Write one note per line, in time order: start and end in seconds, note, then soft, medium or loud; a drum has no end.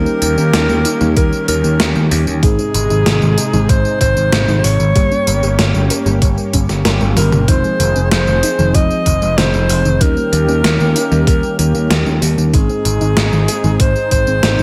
0.00 2.40 D#3 medium
0.00 0.97 G3 medium
0.00 0.97 A#3 medium
0.00 2.40 A#3 medium
0.00 0.97 C#4 medium
0.00 2.40 C#4 medium
0.00 0.97 D#4 medium
0.00 2.40 G4 medium
0.00 1.13 A#4 loud
0.06 0.18 A#3 medium
0.06 tambourine soft
0.22 0.36 D#2 loud
0.22 0.29 D#3 medium
0.22 closed hi-hat medium
0.22 tambourine medium
0.38 0.52 D#2 medium
0.38 0.45 C#4 medium
0.38 tambourine soft
0.54 0.67 D#2 loud
0.54 snare loud
0.54 closed hi-hat medium
0.54 tambourine soft
0.69 0.83 D#2 medium
0.69 0.76 D#3 medium
0.69 tambourine soft
0.85 0.92 D#4 medium
0.85 closed hi-hat medium
0.85 tambourine medium
1.01 1.15 D#2 medium
1.01 1.08 D#3 loud
1.01 2.39 G3 medium
1.01 2.39 A#3 medium
1.01 2.39 C#4 medium
1.01 2.39 D#4 loud
1.01 tambourine soft
1.17 1.30 D#2 loud
1.17 1.32 G4 medium
1.17 1.46 A#4 medium
1.17 kick loud
1.17 closed hi-hat medium
1.17 tambourine soft
1.32 tambourine soft
1.48 1.62 D#2 loud
1.48 1.55 D#3 medium
1.48 2.07 A#4 medium
1.48 closed hi-hat medium
1.48 tambourine medium
1.64 1.78 D#2 medium
1.64 1.71 A#3 medium
1.64 tambourine soft
1.80 1.94 D#2 loud
1.80 1.87 D#3 loud
1.80 snare loud
1.80 closed hi-hat medium
1.80 tambourine soft
1.96 2.10 D#2 medium
1.96 2.03 C#4 medium
1.96 tambourine soft
2.11 2.25 D#2 loud
2.11 open hi-hat medium
2.11 tambourine medium
2.27 2.41 D#2 medium
2.27 2.34 D#3 loud
2.27 tambourine soft
2.43 2.57 G#1 loud
2.43 3.50 G#2 medium
2.43 4.93 C3 medium
2.43 2.58 D#3 medium
2.43 4.93 G#3 medium
2.43 3.50 G#3 medium
2.43 3.50 C4 medium
2.43 4.93 D#4 medium
2.43 3.50 D#4 medium
2.43 3.50 G#4 medium
2.43 3.71 G#4 loud
2.43 kick loud
2.43 closed hi-hat medium
2.43 tambourine soft
2.59 2.70 C4 medium
2.59 tambourine soft
2.74 2.88 G#1 loud
2.74 2.82 D#3 medium
2.74 closed hi-hat medium
2.74 tambourine medium
2.90 3.04 G#1 medium
2.90 2.97 D#4 medium
2.90 tambourine soft
3.06 3.20 G#1 loud
3.06 snare loud
3.06 closed hi-hat medium
3.06 tambourine soft
3.22 3.36 G#1 medium
3.22 3.29 D#3 medium
3.22 tambourine soft
3.38 3.45 G#4 medium
3.38 closed hi-hat medium
3.38 tambourine medium
3.53 3.67 G#1 medium
3.53 4.92 G#2 medium
3.53 3.60 D#3 loud
3.53 4.92 G#3 medium
3.53 4.92 C4 medium
3.53 4.92 D#4 medium
3.53 4.92 G#4 loud
3.53 tambourine soft
3.69 3.83 G#1 loud
3.69 3.84 C5 medium
3.69 4.01 C5 loud
3.69 kick loud
3.69 closed hi-hat medium
3.69 tambourine soft
3.85 tambourine soft
4.01 4.15 G#1 loud
4.01 4.08 D#3 medium
4.01 4.66 C5 loud
4.01 kick medium
4.01 closed hi-hat medium
4.01 tambourine medium
4.16 4.30 G#1 medium
4.16 4.24 C4 medium
4.16 tambourine soft
4.32 4.46 G#1 loud
4.32 4.39 D#3 loud
4.32 snare loud
4.32 closed hi-hat medium
4.32 tambourine soft
4.48 4.62 G#1 medium
4.48 4.55 D#4 medium
4.48 tambourine soft
4.64 4.78 G#1 medium
4.64 5.90 C#5 loud
4.64 open hi-hat medium
4.64 tambourine medium
4.80 4.94 G#1 medium
4.80 4.87 D#3 loud
4.80 tambourine soft
4.95 5.09 G1 loud
4.95 6.02 G2 medium
4.95 5.11 G3 medium
4.95 6.02 G3 medium
4.95 6.02 A#3 medium
4.95 7.46 A#3 medium
4.95 7.46 C#4 medium
4.95 6.02 C#4 medium
4.95 7.46 G4 medium
4.95 6.02 G4 medium
4.95 kick loud
4.95 closed hi-hat loud
4.95 tambourine soft
5.11 5.23 C#4 medium
5.11 tambourine soft
5.27 5.41 G1 loud
5.27 5.34 G3 medium
5.27 closed hi-hat medium
5.27 tambourine medium
5.43 5.57 G1 medium
5.43 5.50 G4 medium
5.43 tambourine soft
5.58 5.72 G1 loud
5.58 snare loud
5.58 closed hi-hat medium
5.58 tambourine soft
5.74 5.88 G1 medium
5.74 5.81 G3 medium
5.74 tambourine soft
5.90 5.97 A#4 medium
5.90 closed hi-hat medium
5.90 tambourine medium
6.06 6.20 G1 medium
6.06 7.44 G2 medium
6.06 7.44 G3 medium
6.06 6.13 G3 loud
6.06 7.44 A#3 medium
6.06 7.44 C#4 medium
6.06 7.44 G4 loud
6.06 tambourine soft
6.22 6.36 G1 loud
6.22 6.37 C#5 medium
6.22 kick loud
6.22 closed hi-hat medium
6.22 tambourine soft
6.38 tambourine soft
6.53 6.67 G1 loud
6.53 6.65 C#4 loud
6.53 kick medium
6.53 closed hi-hat medium
6.53 tambourine medium
6.69 6.83 G1 medium
6.69 6.84 G4 medium
6.69 snare soft
6.69 tambourine soft
6.85 6.99 G1 loud
6.85 7.00 A#4 loud
6.85 snare loud
6.85 closed hi-hat medium
6.85 high tom medium
6.85 tambourine soft
7.01 7.15 G1 medium
7.01 7.12 A#4 medium
7.01 high tom medium
7.01 tambourine soft
7.16 7.30 G1 medium
7.16 7.50 A#4 loud
7.16 open hi-hat medium
7.16 mid tom medium
7.16 tambourine medium
7.32 7.46 G1 medium
7.32 7.47 G4 medium
7.32 mid tom medium
7.32 tambourine soft
7.48 7.62 F1 loud
7.48 7.63 D#3 medium
7.48 8.55 F3 medium
7.48 9.98 F3 medium
7.48 8.55 G#3 medium
7.48 8.55 C4 medium
7.48 9.98 C4 medium
7.48 8.55 D#4 medium
7.48 9.98 D#4 medium
7.48 9.98 G#4 medium
7.48 8.11 C5 loud
7.48 kick loud
7.48 closed hi-hat loud
7.48 tambourine soft
7.64 7.76 G#3 medium
7.64 tambourine soft
7.80 7.94 F1 loud
7.80 7.87 D#3 medium
7.80 closed hi-hat medium
7.80 tambourine medium
7.95 8.09 F1 medium
7.95 8.03 C4 medium
7.95 tambourine soft
8.11 8.25 F1 loud
8.11 8.76 C5 loud
8.11 snare loud
8.11 closed hi-hat medium
8.11 tambourine soft
8.27 8.41 F1 medium
8.27 8.34 D#3 medium
8.27 tambourine soft
8.43 8.50 D#4 medium
8.43 closed hi-hat medium
8.43 tambourine medium
8.59 8.73 F1 medium
8.59 8.66 D#3 loud
8.59 9.97 F3 medium
8.59 9.97 G#3 medium
8.59 9.97 C4 medium
8.59 9.97 D#4 loud
8.59 tambourine soft
8.74 8.88 F1 loud
8.74 8.89 F4 medium
8.74 9.39 D#5 loud
8.74 kick loud
8.74 closed hi-hat medium
8.74 tambourine soft
8.90 tambourine soft
9.06 9.20 F1 loud
9.06 9.13 D#3 medium
9.06 kick medium
9.06 closed hi-hat medium
9.06 tambourine medium
9.22 9.36 F1 medium
9.22 9.29 G#3 medium
9.22 tambourine soft
9.38 9.51 F1 loud
9.38 9.45 D#3 loud
9.38 10.03 C5 loud
9.38 snare loud
9.38 closed hi-hat loud
9.38 tambourine soft
9.53 9.67 F1 medium
9.53 9.60 C4 medium
9.53 tambourine soft
9.69 9.83 F1 loud
9.69 open hi-hat medium
9.69 tambourine medium
9.85 9.99 F1 medium
9.85 9.92 D#3 loud
9.85 tambourine soft
10.01 10.15 D#2 loud
10.01 12.51 D#3 medium
10.01 10.16 D#3 medium
10.01 11.08 G3 medium
10.01 11.08 A#3 medium
10.01 12.51 A#3 medium
10.01 11.08 C#4 medium
10.01 12.51 C#4 medium
10.01 11.08 D#4 medium
10.01 12.51 G4 loud
10.01 11.27 A#4 loud
10.01 kick loud
10.01 closed hi-hat loud
10.01 tambourine soft
10.17 10.28 A#3 medium
10.17 tambourine soft
10.33 10.46 D#2 loud
10.33 10.40 D#3 medium
10.33 closed hi-hat medium
10.33 tambourine medium
10.48 10.62 D#2 medium
10.48 10.55 C#4 medium
10.48 tambourine soft
10.64 10.78 D#2 loud
10.64 snare loud
10.64 closed hi-hat loud
10.64 tambourine soft
10.80 10.94 D#2 medium
10.80 10.87 D#3 medium
10.80 tambourine soft
10.96 11.03 D#4 medium
10.96 closed hi-hat medium
10.96 tambourine medium
11.11 11.25 D#2 medium
11.11 11.18 D#3 loud
11.11 12.50 G3 medium
11.11 12.50 A#3 medium
11.11 12.50 C#4 medium
11.11 12.50 D#4 loud
11.11 tambourine soft
11.27 11.41 D#2 loud
11.27 11.42 G4 medium
11.27 11.57 A#4 medium
11.27 kick loud
11.27 closed hi-hat loud
11.27 tambourine soft
11.43 tambourine soft
11.59 11.73 D#2 loud
11.59 11.66 D#3 medium
11.59 12.18 A#4 medium
11.59 closed hi-hat medium
11.59 tambourine medium
11.75 11.88 D#2 medium
11.75 11.82 A#3 medium
11.75 tambourine soft
11.90 12.04 D#2 loud
11.90 11.97 D#3 loud
11.90 snare loud
11.90 closed hi-hat loud
11.90 tambourine soft
12.06 12.20 D#2 medium
12.06 12.13 C#4 medium
12.06 tambourine soft
12.22 12.36 D#2 medium
12.22 open hi-hat medium
12.22 tambourine medium
12.38 12.52 D#2 medium
12.38 12.45 D#3 loud
12.38 tambourine soft
12.54 12.67 G#1 loud
12.54 13.60 G#2 medium
12.54 12.69 D#3 medium
12.54 14.63 G#3 medium
12.54 13.60 G#3 medium
12.54 13.60 C4 medium
12.54 14.63 C4 medium
12.54 14.63 D#4 medium
12.54 13.60 D#4 medium
12.54 13.60 G#4 medium
12.54 13.82 G#4 loud
12.54 kick loud
12.54 closed hi-hat loud
12.54 tambourine soft
12.69 12.81 C4 medium
12.69 tambourine soft
12.85 12.99 G#1 loud
12.85 12.92 D#3 medium
12.85 closed hi-hat medium
12.85 tambourine medium
13.01 13.15 G#1 medium
13.01 13.08 D#4 medium
13.01 tambourine soft
13.17 13.30 G#1 loud
13.17 snare loud
13.17 closed hi-hat medium
13.17 tambourine soft
13.32 13.46 G#1 medium
13.32 13.39 D#3 medium
13.32 tambourine soft
13.48 13.55 G#4 medium
13.48 closed hi-hat medium
13.48 tambourine medium
13.64 13.78 G#1 medium
13.64 14.63 G#2 medium
13.64 13.71 D#3 loud
13.64 14.63 G#3 medium
13.64 14.63 C4 medium
13.64 14.63 D#4 medium
13.64 14.63 G#4 loud
13.64 tambourine soft
13.80 13.94 G#1 loud
13.80 13.95 C5 medium
13.80 14.11 C5 loud
13.80 kick loud
13.80 closed hi-hat medium
13.80 tambourine soft
13.96 tambourine soft
14.11 14.25 G#1 loud
14.11 14.18 D#3 medium
14.11 14.63 C5 loud
14.11 kick medium
14.11 closed hi-hat medium
14.11 tambourine medium
14.27 14.41 G#1 medium
14.27 14.34 C4 medium
14.27 tambourine soft
14.43 14.57 G#1 loud
14.43 14.50 D#3 loud
14.43 snare loud
14.43 closed hi-hat medium
14.43 tambourine soft
14.58 14.63 G#1 medium
14.58 14.63 D#4 medium
14.58 tambourine soft